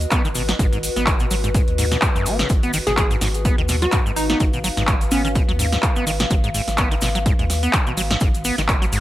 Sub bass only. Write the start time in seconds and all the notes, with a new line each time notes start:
0.25 G#1
0.59 G#1
0.96 G#1
1.31 G#1
1.68 D#2
2.15 G#1
2.50 G#1
2.87 G#1
3.21 G#1
3.58 D#2
4.06 G#1
4.40 G#1
4.77 G#1
5.11 G#1
5.49 D#2
5.96 G#1
6.31 G#1
6.67 G#1
7.02 G#1
7.39 D#2
7.87 G#1
8.21 G#1
8.58 G#1
8.93 G#1